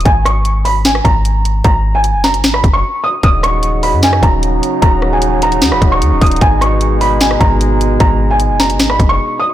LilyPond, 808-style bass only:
\new Staff \with { instrumentName = "808-style bass" } { \clef bass \time 4/4 \key ees \minor \tempo 4 = 151 aes,,2~ aes,,8 aes,,4. | aes,,4~ aes,,16 ges,,8~ ges,,32 aes,,8~ aes,,32 ges,,8 r4 | ees,,4.~ ees,,16 ges,8. ees,,4 r8 | ees,,2 ees,16 ees,,16 ees,,8 ees,16 ees,,16 ees,,8 |
aes,,2~ aes,,8 aes,,4. | aes,,4~ aes,,16 ges,,8~ ges,,32 aes,,8~ aes,,32 ges,,8 r4 | }